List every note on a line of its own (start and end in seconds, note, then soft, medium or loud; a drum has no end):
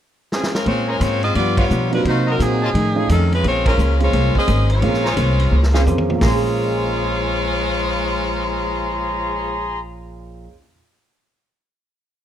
0.32 0.52 F3 medium
0.32 0.53 C4 medium
0.32 0.52 C#4 medium
0.32 0.53 G#4 medium
0.32 snare medium
0.43 snare medium
0.55 0.66 G#3 medium
0.55 0.66 C#4 medium
0.55 0.65 F4 medium
0.55 0.65 A#4 medium
0.55 snare medium
0.66 0.99 A#2 medium
0.66 0.87 G#3 medium
0.66 0.89 A#3 soft
0.66 0.87 C4 medium
0.66 0.90 C#4 soft
0.66 0.87 F4 medium
0.66 0.90 G#4 soft
0.66 0.90 C5 soft
0.66 0.87 C#5 medium
0.66 kick soft
0.66 ride medium
0.88 1.00 G#3 medium
0.88 1.01 C#4 medium
0.88 1.01 F4 medium
0.88 0.96 G#4 medium
0.88 1.01 A#4 medium
0.88 0.96 C5 medium
0.88 0.96 C#5 medium
0.88 0.96 A#5 medium
1.00 1.34 G#2 medium
1.00 1.23 G#3 medium
1.00 1.23 A#3 soft
1.00 1.23 C4 medium
1.00 1.23 C#4 medium
1.00 1.23 F4 medium
1.00 1.23 G#4 medium
1.00 1.24 C5 medium
1.00 1.23 C#5 medium
1.00 kick soft
1.00 hi-hat pedal soft
1.00 ride medium
1.23 1.35 C4 medium
1.23 1.35 F4 medium
1.23 1.35 G#4 medium
1.23 1.35 D#5 medium
1.23 ride soft
1.34 1.58 G2 soft
1.34 1.69 G2 medium
1.34 1.58 F3 soft
1.34 1.59 B3 soft
1.34 1.56 B3 medium
1.34 1.59 D4 soft
1.34 1.56 F4 medium
1.34 1.56 G4 medium
1.34 1.56 D5 medium
1.34 kick soft
1.34 ride medium
1.57 1.90 B3 medium
1.57 1.66 F4 medium
1.57 1.90 F4 medium
1.57 1.90 G4 medium
1.57 1.66 B4 medium
1.57 1.90 C#5 medium
1.57 1.65 D5 medium
1.57 1.65 F5 medium
1.57 kick medium
1.57 ride medium
1.69 1.93 G2 medium
1.69 2.03 B2 medium
1.69 1.93 F3 medium
1.69 1.93 B3 medium
1.69 1.93 D4 medium
1.69 hi-hat pedal medium
1.91 2.36 F#3 medium
1.91 2.04 G3 medium
1.91 2.36 A#3 soft
1.91 2.36 C4 medium
1.91 2.04 D4 medium
1.91 2.36 D#4 soft
1.91 2.04 F4 medium
1.91 2.36 F#4 medium
1.91 2.04 B4 medium
1.91 ride soft
2.05 2.38 C3 medium
2.05 2.28 C3 soft
2.05 2.28 F#3 soft
2.05 2.29 A#3 soft
2.05 2.26 A#3 medium
2.05 2.29 D#4 medium
2.05 2.27 D#4 medium
2.05 2.26 F#4 medium
2.05 2.27 C5 medium
2.05 kick soft
2.05 ride medium
2.27 2.41 F#3 medium
2.27 2.40 C4 medium
2.27 2.41 D#4 medium
2.27 2.35 F#4 medium
2.27 2.41 A#4 medium
2.27 2.35 C5 medium
2.27 2.35 D#5 medium
2.27 2.35 A#5 medium
2.39 2.73 A#2 medium
2.39 2.63 C3 soft
2.39 2.59 F#3 soft
2.39 2.63 F#3 medium
2.39 2.75 F#3 medium
2.39 2.59 A#3 soft
2.39 2.63 A#3 medium
2.39 2.59 C4 soft
2.39 2.75 C4 medium
2.39 2.59 D#4 soft
2.39 2.63 D#4 medium
2.39 3.10 D#4 medium
2.39 2.59 F#4 medium
2.39 3.10 G#4 medium
2.39 kick soft
2.39 hi-hat pedal medium
2.39 ride medium
2.61 2.70 F4 medium
2.61 2.70 C#5 medium
2.61 2.70 D#5 medium
2.61 2.70 A5 medium
2.74 2.97 F2 soft
2.74 3.08 A2 medium
2.74 2.98 D#3 medium
2.74 2.98 A3 soft
2.74 2.99 C#4 soft
2.74 kick soft
2.74 ride medium
2.95 3.07 G#3 medium
2.95 3.07 A3 medium
2.95 3.07 C#4 medium
2.95 3.07 D#4 medium
2.95 3.07 F4 medium
3.09 3.32 F2 medium
3.09 3.42 F2 medium
3.09 3.32 D#3 medium
3.09 3.31 D#3 medium
3.09 3.31 G#3 medium
3.09 3.33 A3 medium
3.09 3.33 C#4 medium
3.09 3.31 C#4 medium
3.09 3.30 A4 medium
3.09 kick soft
3.09 hi-hat pedal medium
3.09 ride medium
3.33 3.45 G#3 medium
3.33 3.45 C#4 medium
3.33 3.45 F4 medium
3.33 3.45 B4 medium
3.33 ride soft
3.44 3.77 A#1 medium
3.44 3.66 G#3 medium
3.44 3.67 A#3 soft
3.44 3.67 C#4 soft
3.44 3.67 G#4 medium
3.44 3.68 C5 soft
3.44 kick soft
3.44 ride medium
3.48 3.66 C4 medium
3.48 3.66 F4 medium
3.48 3.67 C#5 medium
3.66 3.99 G#3 medium
3.66 3.99 C#4 medium
3.66 3.99 F4 medium
3.66 3.74 G#4 medium
3.66 3.99 A#4 medium
3.66 3.74 C5 medium
3.66 3.74 C#5 medium
3.66 3.74 A#5 medium
3.66 kick medium
3.66 ride medium
3.78 4.12 C#2 medium
3.78 4.01 A#3 medium
3.78 4.02 C#4 medium
3.78 4.02 G#4 medium
3.78 4.02 C5 medium
3.78 hi-hat pedal soft
4.00 4.45 G#3 medium
4.00 4.36 G#3 medium
4.00 4.45 A#3 medium
4.00 4.45 C#4 soft
4.00 4.45 F4 medium
4.00 4.36 F4 medium
4.00 4.37 C5 medium
4.00 4.36 C#5 loud
4.00 ride soft
4.13 4.34 C2 medium
4.13 4.36 A#3 soft
4.13 4.37 C#4 soft
4.13 4.37 G#4 soft
4.13 4.37 C5 soft
4.13 kick soft
4.13 ride medium
4.35 4.69 C#4 medium
4.35 4.69 G#4 medium
4.35 4.69 C5 medium
4.35 4.69 D#5 medium
4.35 muted upright bass stroke soft
4.35 kick medium
4.47 4.81 G#1 medium
4.47 4.71 A#3 medium
4.47 4.71 C#4 medium
4.47 4.71 G#4 medium
4.47 4.72 C5 medium
4.47 kick soft
4.47 hi-hat pedal soft
4.47 ride medium
4.70 5.84 G#3 medium
4.70 5.84 F4 medium
4.70 5.84 C5 medium
4.70 5.84 C#5 medium
4.70 ride soft
4.81 5.16 A#1 medium
4.81 5.03 G#3 medium
4.81 5.05 A#3 soft
4.81 5.03 A#3 medium
4.81 5.03 C4 soft
4.81 5.06 C#4 medium
4.81 5.03 C#4 medium
4.81 5.03 F4 medium
4.81 5.06 G#4 soft
4.81 5.06 C5 medium
4.81 kick soft
4.81 ride medium
4.93 snare soft
5.04 5.13 G#4 medium
5.04 5.13 C5 medium
5.04 5.13 C#5 medium
5.04 5.13 A#5 medium
5.04 snare soft
5.16 5.51 C2 medium
5.16 5.40 A#3 medium
5.16 5.40 C#4 medium
5.16 5.41 G#4 medium
5.16 5.41 C5 medium
5.16 kick soft
5.16 hi-hat pedal soft
5.16 ride medium
5.40 ride soft
5.51 5.85 C#2 medium
5.51 5.75 A#3 soft
5.51 5.76 C#4 soft
5.51 5.76 G#4 soft
5.51 5.76 C5 medium
5.63 snare medium
5.73 6.19 G#3 medium
5.73 6.14 A#3 medium
5.73 6.19 C4 medium
5.73 6.19 C#4 medium
5.73 6.19 F4 medium
5.73 5.82 G#4 medium
5.73 5.82 C5 medium
5.73 5.82 C#5 medium
5.73 5.82 F5 medium
5.73 snare medium
5.86 6.20 F2 medium
5.86 6.10 A#3 medium
5.86 6.11 C#4 medium
5.86 6.11 G#4 medium
5.86 6.11 C5 medium
5.86 hi-hat pedal medium
5.86 high tom medium
5.98 high tom medium
6.09 10.44 A#2 medium
6.09 high tom medium
6.15 10.47 A#3 soft
6.15 10.48 A#3 medium
6.21 10.46 A#1 medium
6.21 10.50 G#3 medium
6.21 9.76 G#3 medium
6.21 9.76 F4 medium
6.21 9.80 G#4 medium
6.21 9.77 C5 medium
6.21 9.76 C#5 medium
6.21 9.80 A#5 medium
6.21 9.80 C6 medium
6.21 kick medium
6.21 snare loud
6.21 open hi-hat medium
6.27 10.53 C#4 soft
6.27 10.52 G#4 medium
6.34 10.56 G#4 medium
6.58 10.47 C5 soft
6.65 10.50 D#5 soft
6.74 10.54 G#5 soft
6.82 10.59 C6 soft
6.93 10.64 D#6 soft
7.03 10.69 G#6 soft
7.15 10.75 C7 soft